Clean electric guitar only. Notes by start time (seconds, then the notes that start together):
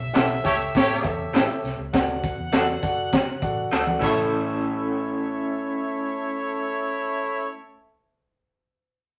0.14 G3 C#4 E4 A4
1.33 G3 C#4 E4 A4
2.52 A3 D4 F#4 A4
3.72 A3 D4 F#4 A4
3.99 A3 C#4 E4
4.04 A4